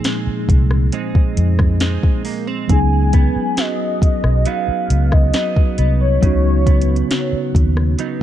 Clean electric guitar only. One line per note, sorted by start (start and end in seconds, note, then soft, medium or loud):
0.00 2.69 A#2 medium
0.00 0.92 C4 soft
0.00 0.94 D#4 medium
0.05 0.93 G#3 medium
0.93 1.81 G#3 medium
0.93 1.81 C4 medium
0.93 1.82 D#4 medium
1.81 3.58 G#3 medium
1.81 2.25 C4 medium
1.81 4.47 D#4 medium
2.25 2.47 A#3 medium
2.47 2.78 C4 medium
3.14 4.46 B3 medium
3.58 4.45 F#3 medium
4.46 5.33 F#3 medium
4.46 5.34 B3 medium
4.46 5.35 D#4 medium
5.34 7.10 F#3 medium
5.34 5.77 B3 medium
5.34 8.00 D#4 medium
5.78 6.65 B3 medium
6.22 8.23 C#3 medium
6.66 7.98 B3 medium
7.11 7.98 F#3 medium
7.99 8.23 F#3 medium
7.99 8.23 B3 medium
7.99 8.23 D#4 medium